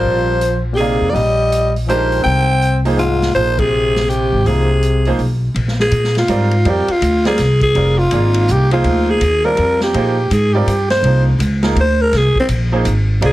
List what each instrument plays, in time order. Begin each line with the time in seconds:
Already playing: tenor saxophone F3, upright piano G3 C4 F4 A#4 D5, alto saxophone C5
0.04 upright bass A#1
0.41 closed hi-hat
0.73 tenor saxophone A#2 C3, alto saxophone G4
0.77 upright piano A#3 D#4 G#4 D5 F5, alto saxophone G#4, open hi-hat
1.01 upright bass F2
1.10 tenor saxophone F3 G3, alto saxophone D5
1.14 upright bass A#1, alto saxophone D#5, open hi-hat
1.52 closed hi-hat
1.76 open hi-hat
1.87 upright piano D#3 G#3 D4 G4 A#4, tenor saxophone F3, alto saxophone C5, closed hi-hat
2.12 open hi-hat
2.22 upright bass C2, tenor saxophone C4, alto saxophone G5
2.26 open hi-hat
2.62 closed hi-hat
2.85 upright piano F3 A#3 D#4 G#4 C5, open hi-hat
2.97 tenor saxophone G#2, alto saxophone F4, closed hi-hat
3.22 snare, open hi-hat
3.34 upright bass A#1, tenor saxophone F3, upright piano F3 A#3 D#4 G#4 C5, alto saxophone C5, open hi-hat
3.58 tenor saxophone C3, alto saxophone G#4, kick, ride
3.96 snare, open hi-hat
4.06 tenor saxophone C3, alto saxophone G4
4.10 closed hi-hat
4.32 upright bass G#1
4.44 upright bass C2, tenor saxophone C3, upright piano F3 A#3 D#4 G#4 C5, alto saxophone G#4, open hi-hat
4.83 closed hi-hat
5.05 upright piano F3 A#3 D#4 G#4 C5, open hi-hat
5.18 upright bass B1, open hi-hat
5.54 upright bass A#1, ride
5.68 snare
5.80 alto saxophone G#4, snare
5.91 upright bass A#2, hi-hat pedal, ride
6.04 snare
6.15 alto saxophone F4, snare, ride
6.28 upright bass G#2, upright piano G3 C4 F4 A#4 D5, hi-hat pedal, ride
6.51 ride
6.65 upright bass F2, upright piano G3 C4 F4 A#4 D5, ride
6.70 alto saxophone G4
6.88 alto saxophone F4, muted upright bass stroke, ride
7.01 upright bass D2, hi-hat pedal, ride
7.25 upright piano G3 C4 F4 A#4 D5, alto saxophone G#4, snare, ride
7.38 upright bass C2, snare, hi-hat pedal, ride
7.61 alto saxophone G#4, kick, ride
7.75 upright bass F1, upright piano G3 C4 F4 A#4 D5, ride
7.98 alto saxophone F4
8.11 upright bass G#1, upright piano A#3 D#4 G#4 D5 F5, hi-hat pedal, ride
8.34 ride
8.48 upright bass C2, alto saxophone G4, hi-hat pedal
8.71 upright piano F3 A#3 D#4 G#4 C5, alto saxophone F4, ride
8.84 upright bass D2, ride
9.10 alto saxophone G#4
9.21 upright bass D#2, hi-hat pedal, ride
9.44 upright piano G3 C4 F4 A#4 D5, alto saxophone A#4
9.57 upright bass F2, ride
9.80 alto saxophone G4, snare
9.94 upright bass A#2, upright piano F3 A#3 D#4 G#4 C5, ride
10.30 upright bass G#2, alto saxophone G#4, hi-hat pedal, ride
10.53 upright piano G3 C4 F4 A#4 D5, alto saxophone G4
10.66 upright bass G2, hi-hat pedal, ride
10.90 alto saxophone C5, snare, ride
11.02 upright bass C2, upright piano F3 A#3 D#4 G#4 C5, ride
11.39 upright bass C#2, hi-hat pedal, ride
11.63 upright piano F3 A#3 D#4 G#4 A#4, snare, ride
11.75 upright bass D2, ride
11.80 alto saxophone C5
12.01 alto saxophone A#4
12.12 upright bass C2, snare, ride
12.17 alto saxophone G#4
12.35 muted upright bass stroke, kick
12.40 alto saxophone C4
12.48 upright bass A#1, hi-hat pedal, ride
12.72 upright piano F3 A#3 D#4 G#4 C5
12.85 upright bass G#1, hi-hat pedal, ride
13.21 upright bass C2, upright piano G3 C4 F4 A#4 D5, ride
13.25 alto saxophone G#4